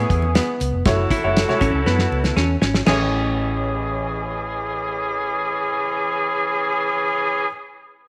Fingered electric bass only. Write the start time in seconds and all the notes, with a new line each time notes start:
0.10 E2
0.61 C#2
0.73 F1
0.86 F#1
1.24 F#1
1.61 A1
1.74 C#2
1.86 F#2
2.12 C#2
2.36 E2
2.62 G#1
2.87 A1